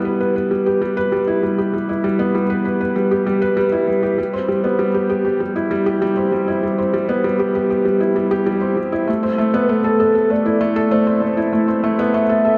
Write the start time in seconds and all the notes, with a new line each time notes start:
Already playing: G3 B3 E4
0.05 B4
0.21 B4
0.36 B4
0.51 G3
0.66 G4
0.82 G3
0.97 B4
1.12 G3
1.27 E4
1.43 G3
1.58 G4
1.74 G3
1.89 E4
2.04 G3
2.19 B3
2.35 G3
2.50 B4
2.65 B4
2.81 B4
2.96 G3
3.11 G4
3.27 G3
3.42 B4
3.57 G3
3.72 E4
3.88 G3
4.03 G4
4.18 G3
4.33 C4
4.48 G3
4.64 B3
4.79 G3
4.94 G4
5.10 G4
5.25 G4
5.40 G3
5.56 E4
5.71 G3
5.86 G4
6.02 G3
6.17 C4
6.32 G3
6.48 E4
6.63 G3
6.78 C4
6.94 G3
7.09 B3
7.24 G3
7.39 G4
7.55 G4
7.70 G4
7.85 G3
8.00 E4
8.16 G3
8.31 G4
8.46 G3
8.62 C4
8.77 G3
8.92 E4
9.08 A3
9.23 C4
9.38 A3
9.54 B3
9.62 B4
9.69 A3 A4
9.84 A4
10.00 A4
10.15 A4
10.30 A3 D5
10.46 E4
10.61 A3
10.76 A4
10.91 A3 C5
11.07 C4
11.22 A3
11.37 E4
11.53 A3
11.68 C4
11.84 A3
11.99 B3
12.14 A3 E5
12.29 A4
12.45 A4